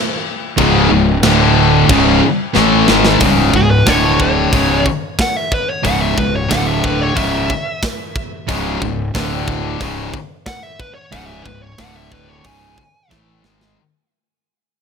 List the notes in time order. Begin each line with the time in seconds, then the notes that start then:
0.58 C#1 C#2 G#2 C#3, kick, crash
0.91 C#1 C#2 G#2
1.23 D1 D2 A2 D3, snare, crash
1.89 C#1 C#2 G#2 C#3, kick, crash
2.55 A1 A2 E3 A3, snare
2.88 G#1 G#2 D#3 G#3, snare
3.05 snare
3.19 C#1 C#2 G#2 C#3, kick, open hi-hat
3.23 C#3
3.54 C#1 C#2 G#2 G#4, kick
3.71 B4
3.87 D1 D2 A2 D3 C#5, kick, snare, open hi-hat
4.20 C#5, kick
4.52 C#1 C#2 G#2 C#3, kick, open hi-hat
4.86 kick
5.19 F#5, kick, snare, open hi-hat
5.36 E5
5.52 B4, kick
5.70 C#5
5.83 C#1 C#2 G#2 C#3 F#5, kick, open hi-hat
6.01 E5
6.17 C#1 C#2 G#2 B4, kick
6.36 C#5
6.49 D1 D2 A2 D3 F#5, kick, snare, open hi-hat
6.67 E5
6.84 B4, kick
7.01 C#5
7.15 C#1 C#2 G#2 C#3 E5, kick, open hi-hat
7.50 kick
7.83 kick, snare, open hi-hat
8.16 kick
8.49 C#1 C#2 G#2 C#3, kick, open hi-hat
8.82 C#1 C#2 G#2, kick
9.15 D1 D2 A2 D3, kick, snare, open hi-hat
9.48 kick
9.80 C#1 C#2 G#2 C#3, kick, open hi-hat
10.14 kick
10.46 F#5, kick, snare, open hi-hat
10.63 E5
10.80 B4, kick
10.94 C#5
11.12 C#1 C#2 G#2 C#3 F#5, kick, open hi-hat
11.26 E5
11.43 C#1 C#2 G#2 B4, kick
11.62 C#5
11.78 D1 D2 A2 D3 F#5, kick, snare, open hi-hat
11.96 E5
12.12 B4, kick
12.29 C#5
12.44 C#1 C#2 G#2 C#3 G#5, kick, open hi-hat
12.78 kick
13.11 A1 A2 E3 A3, kick, snare
13.44 G#1 G#2 D#3 G#3, snare
13.61 snare